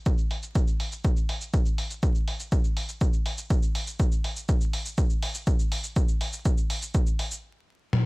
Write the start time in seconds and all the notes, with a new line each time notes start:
0.06 kick, cabasa
0.18 cabasa
0.31 open hi-hat
0.43 cabasa
0.55 kick, cabasa
0.68 cabasa
0.80 open hi-hat
0.92 cabasa
1.04 kick, cabasa
1.17 cabasa
1.29 open hi-hat
1.41 cabasa
1.54 kick, cabasa
1.66 cabasa
1.78 open hi-hat
1.91 cabasa
2.03 kick, cabasa
2.15 cabasa
2.28 open hi-hat
2.40 cabasa
2.52 kick, cabasa
2.64 cabasa
2.77 open hi-hat
2.89 cabasa
3.01 kick, cabasa
3.14 cabasa
3.26 open hi-hat
3.38 cabasa
3.50 kick, cabasa
3.63 cabasa
3.75 open hi-hat
3.87 cabasa
4.00 kick, cabasa
4.12 cabasa
4.24 open hi-hat
4.36 cabasa
4.49 kick, cabasa
4.61 cabasa
4.73 open hi-hat
4.86 cabasa
4.98 kick, cabasa
5.10 cabasa
5.23 open hi-hat
5.35 cabasa
5.47 kick, cabasa
5.59 cabasa
5.72 open hi-hat
5.84 cabasa
5.96 kick, cabasa
6.08 cabasa
6.21 open hi-hat
6.33 cabasa
6.45 kick, cabasa
6.58 cabasa
6.70 open hi-hat
6.82 cabasa
6.95 kick, cabasa
7.07 cabasa
7.19 open hi-hat
7.32 cabasa
7.93 high tom